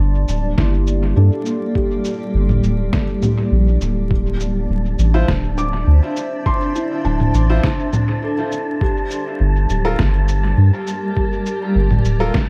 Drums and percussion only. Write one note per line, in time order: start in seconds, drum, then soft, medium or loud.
0.28 cabasa soft
0.58 kick loud
0.58 snare medium
0.87 cabasa soft
1.46 cabasa soft
1.75 kick loud
2.05 cabasa soft
2.49 low conga medium
2.64 cabasa soft
2.93 kick loud
2.93 snare medium
3.23 low conga medium
3.23 cabasa soft
3.81 cabasa soft
4.11 kick loud
4.40 cabasa soft
4.99 cabasa soft
5.28 kick loud
5.28 snare medium
5.58 cabasa soft
6.17 cabasa soft
6.46 kick medium
6.75 cabasa soft
7.20 low conga medium
7.34 cabasa soft
7.63 kick medium
7.63 snare medium
7.93 low conga medium
7.93 cabasa soft
8.52 cabasa soft
8.81 kick medium
9.11 cabasa soft
9.70 cabasa soft
9.99 kick medium
9.99 snare medium
10.28 cabasa soft
10.87 cabasa soft
11.17 kick medium
11.46 cabasa medium
11.91 low conga medium
12.05 cabasa medium
12.34 kick loud
12.34 snare medium